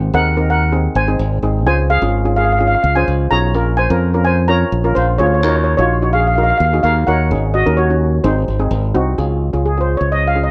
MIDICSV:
0, 0, Header, 1, 4, 480
1, 0, Start_track
1, 0, Key_signature, -5, "major"
1, 0, Tempo, 469851
1, 1701, Time_signature, 4, 2, 24, 8
1, 10736, End_track
2, 0, Start_track
2, 0, Title_t, "Steel pan"
2, 0, Program_c, 0, 114
2, 148, Note_on_c, 0, 70, 75
2, 149, Note_on_c, 0, 78, 93
2, 477, Note_off_c, 0, 70, 0
2, 478, Note_off_c, 0, 78, 0
2, 512, Note_on_c, 0, 78, 92
2, 514, Note_on_c, 0, 70, 70
2, 953, Note_off_c, 0, 78, 0
2, 954, Note_off_c, 0, 70, 0
2, 983, Note_on_c, 0, 80, 83
2, 984, Note_on_c, 0, 72, 65
2, 1429, Note_off_c, 0, 72, 0
2, 1429, Note_off_c, 0, 80, 0
2, 1701, Note_on_c, 0, 80, 109
2, 1713, Note_on_c, 0, 72, 83
2, 1809, Note_off_c, 0, 80, 0
2, 1819, Note_off_c, 0, 72, 0
2, 1940, Note_on_c, 0, 77, 101
2, 1948, Note_on_c, 0, 68, 80
2, 2388, Note_off_c, 0, 77, 0
2, 2392, Note_off_c, 0, 68, 0
2, 2415, Note_on_c, 0, 77, 90
2, 2426, Note_on_c, 0, 68, 75
2, 2491, Note_off_c, 0, 77, 0
2, 2497, Note_off_c, 0, 68, 0
2, 2503, Note_on_c, 0, 77, 66
2, 2567, Note_off_c, 0, 77, 0
2, 2580, Note_on_c, 0, 77, 77
2, 2634, Note_off_c, 0, 77, 0
2, 2646, Note_on_c, 0, 77, 67
2, 2722, Note_off_c, 0, 77, 0
2, 2734, Note_on_c, 0, 77, 84
2, 2797, Note_off_c, 0, 77, 0
2, 2809, Note_on_c, 0, 77, 72
2, 2879, Note_off_c, 0, 77, 0
2, 2891, Note_on_c, 0, 77, 81
2, 2967, Note_off_c, 0, 77, 0
2, 3018, Note_on_c, 0, 80, 97
2, 3034, Note_on_c, 0, 72, 76
2, 3363, Note_off_c, 0, 72, 0
2, 3378, Note_on_c, 0, 82, 102
2, 3391, Note_off_c, 0, 80, 0
2, 3397, Note_on_c, 0, 73, 81
2, 3827, Note_off_c, 0, 82, 0
2, 3838, Note_off_c, 0, 73, 0
2, 3852, Note_on_c, 0, 80, 103
2, 3869, Note_on_c, 0, 72, 80
2, 4304, Note_off_c, 0, 80, 0
2, 4314, Note_off_c, 0, 72, 0
2, 4338, Note_on_c, 0, 80, 91
2, 4361, Note_on_c, 0, 72, 75
2, 4577, Note_off_c, 0, 72, 0
2, 4577, Note_on_c, 0, 82, 105
2, 4589, Note_off_c, 0, 80, 0
2, 4596, Note_on_c, 0, 73, 80
2, 5037, Note_off_c, 0, 73, 0
2, 5058, Note_on_c, 0, 72, 89
2, 5076, Note_off_c, 0, 82, 0
2, 5078, Note_on_c, 0, 65, 71
2, 5295, Note_off_c, 0, 65, 0
2, 5296, Note_on_c, 0, 73, 95
2, 5309, Note_off_c, 0, 72, 0
2, 5316, Note_on_c, 0, 65, 67
2, 5365, Note_off_c, 0, 73, 0
2, 5378, Note_on_c, 0, 73, 66
2, 5384, Note_off_c, 0, 65, 0
2, 5445, Note_off_c, 0, 73, 0
2, 5457, Note_on_c, 0, 73, 73
2, 5516, Note_off_c, 0, 73, 0
2, 5528, Note_on_c, 0, 73, 65
2, 5595, Note_off_c, 0, 73, 0
2, 5607, Note_on_c, 0, 73, 79
2, 5667, Note_off_c, 0, 73, 0
2, 5679, Note_on_c, 0, 73, 63
2, 5749, Note_off_c, 0, 73, 0
2, 5761, Note_on_c, 0, 73, 77
2, 5836, Note_off_c, 0, 73, 0
2, 5898, Note_on_c, 0, 73, 93
2, 5918, Note_on_c, 0, 65, 70
2, 6235, Note_off_c, 0, 73, 0
2, 6245, Note_off_c, 0, 65, 0
2, 6262, Note_on_c, 0, 77, 95
2, 6282, Note_on_c, 0, 68, 72
2, 6325, Note_off_c, 0, 77, 0
2, 6338, Note_on_c, 0, 77, 65
2, 6347, Note_off_c, 0, 68, 0
2, 6397, Note_off_c, 0, 77, 0
2, 6409, Note_on_c, 0, 77, 72
2, 6480, Note_off_c, 0, 77, 0
2, 6493, Note_on_c, 0, 77, 65
2, 6562, Note_off_c, 0, 77, 0
2, 6574, Note_on_c, 0, 77, 83
2, 6632, Note_off_c, 0, 77, 0
2, 6644, Note_on_c, 0, 77, 72
2, 6708, Note_off_c, 0, 77, 0
2, 6721, Note_on_c, 0, 77, 82
2, 6783, Note_off_c, 0, 77, 0
2, 6795, Note_on_c, 0, 77, 68
2, 6871, Note_off_c, 0, 77, 0
2, 6978, Note_on_c, 0, 77, 93
2, 6998, Note_on_c, 0, 70, 72
2, 7215, Note_off_c, 0, 70, 0
2, 7221, Note_on_c, 0, 78, 91
2, 7228, Note_off_c, 0, 77, 0
2, 7237, Note_on_c, 0, 73, 74
2, 7668, Note_off_c, 0, 78, 0
2, 7677, Note_off_c, 0, 73, 0
2, 7702, Note_on_c, 0, 75, 91
2, 7711, Note_on_c, 0, 66, 71
2, 7931, Note_off_c, 0, 66, 0
2, 7938, Note_on_c, 0, 73, 87
2, 7950, Note_off_c, 0, 75, 0
2, 7955, Note_on_c, 0, 66, 68
2, 8386, Note_off_c, 0, 73, 0
2, 8395, Note_off_c, 0, 66, 0
2, 8416, Note_on_c, 0, 72, 77
2, 8427, Note_on_c, 0, 63, 60
2, 9098, Note_off_c, 0, 72, 0
2, 9103, Note_off_c, 0, 63, 0
2, 9864, Note_on_c, 0, 68, 81
2, 10012, Note_off_c, 0, 68, 0
2, 10020, Note_on_c, 0, 72, 77
2, 10185, Note_off_c, 0, 72, 0
2, 10188, Note_on_c, 0, 73, 83
2, 10333, Note_off_c, 0, 73, 0
2, 10339, Note_on_c, 0, 75, 95
2, 10488, Note_off_c, 0, 75, 0
2, 10497, Note_on_c, 0, 77, 89
2, 10660, Note_on_c, 0, 75, 86
2, 10664, Note_off_c, 0, 77, 0
2, 10736, Note_off_c, 0, 75, 0
2, 10736, End_track
3, 0, Start_track
3, 0, Title_t, "Steel pan"
3, 0, Program_c, 1, 114
3, 141, Note_on_c, 1, 68, 80
3, 143, Note_on_c, 1, 60, 75
3, 143, Note_on_c, 1, 63, 67
3, 283, Note_off_c, 1, 60, 0
3, 283, Note_off_c, 1, 68, 0
3, 284, Note_off_c, 1, 63, 0
3, 378, Note_on_c, 1, 70, 76
3, 379, Note_on_c, 1, 63, 64
3, 381, Note_on_c, 1, 60, 67
3, 595, Note_off_c, 1, 63, 0
3, 595, Note_off_c, 1, 70, 0
3, 596, Note_off_c, 1, 60, 0
3, 738, Note_on_c, 1, 60, 75
3, 740, Note_on_c, 1, 63, 65
3, 740, Note_on_c, 1, 68, 76
3, 955, Note_off_c, 1, 60, 0
3, 956, Note_off_c, 1, 63, 0
3, 956, Note_off_c, 1, 68, 0
3, 1101, Note_on_c, 1, 68, 81
3, 1103, Note_on_c, 1, 60, 72
3, 1103, Note_on_c, 1, 63, 69
3, 1317, Note_off_c, 1, 68, 0
3, 1318, Note_off_c, 1, 60, 0
3, 1318, Note_off_c, 1, 63, 0
3, 1460, Note_on_c, 1, 63, 69
3, 1460, Note_on_c, 1, 68, 82
3, 1463, Note_on_c, 1, 60, 75
3, 1606, Note_off_c, 1, 63, 0
3, 1606, Note_off_c, 1, 68, 0
3, 1607, Note_off_c, 1, 60, 0
3, 1702, Note_on_c, 1, 61, 74
3, 1703, Note_on_c, 1, 65, 70
3, 1704, Note_on_c, 1, 68, 82
3, 1918, Note_off_c, 1, 61, 0
3, 1919, Note_off_c, 1, 65, 0
3, 1919, Note_off_c, 1, 68, 0
3, 2066, Note_on_c, 1, 61, 75
3, 2067, Note_on_c, 1, 68, 80
3, 2068, Note_on_c, 1, 65, 68
3, 2207, Note_off_c, 1, 61, 0
3, 2208, Note_off_c, 1, 65, 0
3, 2208, Note_off_c, 1, 68, 0
3, 2299, Note_on_c, 1, 61, 67
3, 2299, Note_on_c, 1, 65, 64
3, 2301, Note_on_c, 1, 68, 75
3, 2517, Note_off_c, 1, 65, 0
3, 2518, Note_off_c, 1, 61, 0
3, 2519, Note_off_c, 1, 68, 0
3, 2661, Note_on_c, 1, 65, 64
3, 2662, Note_on_c, 1, 61, 75
3, 2662, Note_on_c, 1, 68, 84
3, 2879, Note_off_c, 1, 61, 0
3, 2879, Note_off_c, 1, 65, 0
3, 2879, Note_off_c, 1, 68, 0
3, 3029, Note_on_c, 1, 61, 77
3, 3029, Note_on_c, 1, 65, 67
3, 3029, Note_on_c, 1, 68, 82
3, 3243, Note_off_c, 1, 61, 0
3, 3243, Note_off_c, 1, 65, 0
3, 3243, Note_off_c, 1, 68, 0
3, 3386, Note_on_c, 1, 61, 78
3, 3386, Note_on_c, 1, 68, 86
3, 3388, Note_on_c, 1, 65, 68
3, 3531, Note_off_c, 1, 61, 0
3, 3531, Note_off_c, 1, 65, 0
3, 3531, Note_off_c, 1, 68, 0
3, 3626, Note_on_c, 1, 65, 68
3, 3627, Note_on_c, 1, 61, 73
3, 3627, Note_on_c, 1, 70, 86
3, 3842, Note_off_c, 1, 61, 0
3, 3842, Note_off_c, 1, 65, 0
3, 3842, Note_off_c, 1, 70, 0
3, 3988, Note_on_c, 1, 61, 70
3, 3988, Note_on_c, 1, 65, 67
3, 3988, Note_on_c, 1, 70, 84
3, 4130, Note_off_c, 1, 61, 0
3, 4130, Note_off_c, 1, 65, 0
3, 4130, Note_off_c, 1, 70, 0
3, 4230, Note_on_c, 1, 61, 73
3, 4231, Note_on_c, 1, 65, 61
3, 4231, Note_on_c, 1, 70, 81
3, 4444, Note_off_c, 1, 61, 0
3, 4444, Note_off_c, 1, 65, 0
3, 4445, Note_off_c, 1, 70, 0
3, 4580, Note_on_c, 1, 61, 71
3, 4582, Note_on_c, 1, 65, 67
3, 4582, Note_on_c, 1, 70, 86
3, 4799, Note_off_c, 1, 61, 0
3, 4800, Note_off_c, 1, 65, 0
3, 4800, Note_off_c, 1, 70, 0
3, 4945, Note_on_c, 1, 61, 76
3, 4947, Note_on_c, 1, 65, 66
3, 4948, Note_on_c, 1, 70, 86
3, 5162, Note_off_c, 1, 61, 0
3, 5163, Note_off_c, 1, 65, 0
3, 5163, Note_off_c, 1, 70, 0
3, 5312, Note_on_c, 1, 61, 81
3, 5313, Note_on_c, 1, 65, 72
3, 5313, Note_on_c, 1, 68, 89
3, 5454, Note_off_c, 1, 61, 0
3, 5454, Note_off_c, 1, 65, 0
3, 5454, Note_off_c, 1, 68, 0
3, 5553, Note_on_c, 1, 66, 65
3, 5554, Note_on_c, 1, 63, 74
3, 5555, Note_on_c, 1, 70, 79
3, 5766, Note_off_c, 1, 63, 0
3, 5766, Note_off_c, 1, 66, 0
3, 5766, Note_off_c, 1, 70, 0
3, 5916, Note_on_c, 1, 63, 76
3, 5917, Note_on_c, 1, 66, 69
3, 5918, Note_on_c, 1, 73, 86
3, 6054, Note_off_c, 1, 63, 0
3, 6055, Note_off_c, 1, 66, 0
3, 6055, Note_off_c, 1, 73, 0
3, 6154, Note_on_c, 1, 73, 76
3, 6155, Note_on_c, 1, 63, 67
3, 6156, Note_on_c, 1, 66, 65
3, 6366, Note_off_c, 1, 63, 0
3, 6366, Note_off_c, 1, 73, 0
3, 6367, Note_off_c, 1, 66, 0
3, 6515, Note_on_c, 1, 63, 74
3, 6516, Note_on_c, 1, 66, 66
3, 6517, Note_on_c, 1, 70, 77
3, 6726, Note_off_c, 1, 63, 0
3, 6727, Note_off_c, 1, 66, 0
3, 6727, Note_off_c, 1, 70, 0
3, 6877, Note_on_c, 1, 63, 76
3, 6877, Note_on_c, 1, 66, 73
3, 6881, Note_on_c, 1, 68, 82
3, 7087, Note_off_c, 1, 63, 0
3, 7087, Note_off_c, 1, 66, 0
3, 7089, Note_off_c, 1, 68, 0
3, 7234, Note_on_c, 1, 66, 68
3, 7234, Note_on_c, 1, 70, 89
3, 7235, Note_on_c, 1, 63, 77
3, 7375, Note_off_c, 1, 63, 0
3, 7375, Note_off_c, 1, 66, 0
3, 7375, Note_off_c, 1, 70, 0
3, 7471, Note_on_c, 1, 61, 73
3, 7473, Note_on_c, 1, 68, 82
3, 7475, Note_on_c, 1, 63, 65
3, 7684, Note_off_c, 1, 61, 0
3, 7685, Note_off_c, 1, 68, 0
3, 7686, Note_off_c, 1, 63, 0
3, 7826, Note_on_c, 1, 61, 76
3, 7828, Note_on_c, 1, 63, 72
3, 7828, Note_on_c, 1, 70, 86
3, 7968, Note_off_c, 1, 61, 0
3, 7969, Note_off_c, 1, 63, 0
3, 7969, Note_off_c, 1, 70, 0
3, 8071, Note_on_c, 1, 66, 75
3, 8072, Note_on_c, 1, 63, 62
3, 8073, Note_on_c, 1, 61, 72
3, 8283, Note_off_c, 1, 66, 0
3, 8284, Note_off_c, 1, 61, 0
3, 8284, Note_off_c, 1, 63, 0
3, 8421, Note_on_c, 1, 60, 69
3, 8422, Note_on_c, 1, 68, 81
3, 8423, Note_on_c, 1, 63, 69
3, 8638, Note_off_c, 1, 60, 0
3, 8639, Note_off_c, 1, 63, 0
3, 8639, Note_off_c, 1, 68, 0
3, 8780, Note_on_c, 1, 60, 70
3, 8780, Note_on_c, 1, 63, 71
3, 8780, Note_on_c, 1, 68, 81
3, 8998, Note_off_c, 1, 60, 0
3, 8998, Note_off_c, 1, 63, 0
3, 8998, Note_off_c, 1, 68, 0
3, 9138, Note_on_c, 1, 66, 101
3, 9140, Note_on_c, 1, 60, 90
3, 9141, Note_on_c, 1, 63, 80
3, 9286, Note_off_c, 1, 66, 0
3, 9287, Note_off_c, 1, 60, 0
3, 9287, Note_off_c, 1, 63, 0
3, 9378, Note_on_c, 1, 65, 72
3, 9380, Note_on_c, 1, 68, 88
3, 9381, Note_on_c, 1, 61, 76
3, 9596, Note_off_c, 1, 65, 0
3, 9597, Note_off_c, 1, 61, 0
3, 9597, Note_off_c, 1, 68, 0
3, 9739, Note_on_c, 1, 61, 65
3, 9739, Note_on_c, 1, 65, 62
3, 9742, Note_on_c, 1, 68, 74
3, 9883, Note_off_c, 1, 61, 0
3, 9883, Note_off_c, 1, 65, 0
3, 9885, Note_off_c, 1, 68, 0
3, 9985, Note_on_c, 1, 65, 57
3, 9987, Note_on_c, 1, 61, 64
3, 9987, Note_on_c, 1, 68, 67
3, 10342, Note_off_c, 1, 65, 0
3, 10343, Note_off_c, 1, 61, 0
3, 10343, Note_off_c, 1, 68, 0
3, 10579, Note_on_c, 1, 65, 61
3, 10580, Note_on_c, 1, 61, 66
3, 10580, Note_on_c, 1, 68, 73
3, 10736, Note_off_c, 1, 61, 0
3, 10736, Note_off_c, 1, 65, 0
3, 10736, Note_off_c, 1, 68, 0
3, 10736, End_track
4, 0, Start_track
4, 0, Title_t, "Fingered electric bass"
4, 0, Program_c, 2, 33
4, 139, Note_on_c, 2, 39, 82
4, 885, Note_off_c, 2, 39, 0
4, 973, Note_on_c, 2, 32, 84
4, 1189, Note_off_c, 2, 32, 0
4, 1218, Note_on_c, 2, 32, 96
4, 1432, Note_off_c, 2, 32, 0
4, 1455, Note_on_c, 2, 32, 79
4, 1698, Note_off_c, 2, 32, 0
4, 1698, Note_on_c, 2, 37, 91
4, 2021, Note_off_c, 2, 37, 0
4, 2060, Note_on_c, 2, 32, 84
4, 2807, Note_off_c, 2, 32, 0
4, 2898, Note_on_c, 2, 37, 87
4, 3114, Note_off_c, 2, 37, 0
4, 3144, Note_on_c, 2, 37, 89
4, 3357, Note_off_c, 2, 37, 0
4, 3383, Note_on_c, 2, 35, 83
4, 3626, Note_off_c, 2, 35, 0
4, 3626, Note_on_c, 2, 34, 95
4, 3947, Note_off_c, 2, 34, 0
4, 3986, Note_on_c, 2, 41, 90
4, 4731, Note_off_c, 2, 41, 0
4, 4824, Note_on_c, 2, 34, 81
4, 5038, Note_off_c, 2, 34, 0
4, 5070, Note_on_c, 2, 34, 95
4, 5281, Note_off_c, 2, 34, 0
4, 5304, Note_on_c, 2, 38, 81
4, 5545, Note_off_c, 2, 38, 0
4, 5545, Note_on_c, 2, 39, 96
4, 5866, Note_off_c, 2, 39, 0
4, 5910, Note_on_c, 2, 34, 87
4, 6652, Note_off_c, 2, 34, 0
4, 6744, Note_on_c, 2, 39, 87
4, 6957, Note_off_c, 2, 39, 0
4, 6984, Note_on_c, 2, 39, 93
4, 7197, Note_off_c, 2, 39, 0
4, 7228, Note_on_c, 2, 39, 83
4, 7466, Note_on_c, 2, 32, 95
4, 7482, Note_off_c, 2, 39, 0
4, 7786, Note_off_c, 2, 32, 0
4, 7831, Note_on_c, 2, 39, 87
4, 8359, Note_off_c, 2, 39, 0
4, 8420, Note_on_c, 2, 32, 104
4, 8634, Note_off_c, 2, 32, 0
4, 8663, Note_on_c, 2, 32, 82
4, 8876, Note_off_c, 2, 32, 0
4, 8896, Note_on_c, 2, 32, 97
4, 9111, Note_off_c, 2, 32, 0
4, 9141, Note_on_c, 2, 36, 86
4, 9354, Note_off_c, 2, 36, 0
4, 9381, Note_on_c, 2, 37, 83
4, 9702, Note_off_c, 2, 37, 0
4, 9741, Note_on_c, 2, 37, 74
4, 10168, Note_off_c, 2, 37, 0
4, 10223, Note_on_c, 2, 37, 83
4, 10736, Note_off_c, 2, 37, 0
4, 10736, End_track
0, 0, End_of_file